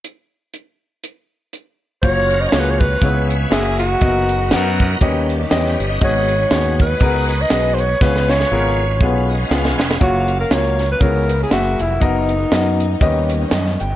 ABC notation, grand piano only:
X:1
M:4/4
L:1/8
Q:"Swing" 1/4=120
K:F#
V:1 name="Grand piano"
z8 | [A,EFc] z [A,EFG] z [B,=EGc] z [A,FG=e] z | [B,FAd] z [B,FAf] z [C=GBd] z [CGBd] z | [B,FGd] z [B,FGc] z [B,FGA] z [B,FGB] z |
[B,EGc] z [B,EGA] z [B,EGB] z [B,EGB] z | [A,EFc] z [A,EFA] z [B,=EGc] z [A,FG=e] z | [B,FAd] z [B,FAd] z [C=GBd] z d =g |]
V:2 name="Grand piano" clef=bass
z8 | z4 C,2 z2 | z4 D,3 z | G,,3 z4 z |
C,3 z4 z | z4 C,2 z2 | z4 D,3 z |]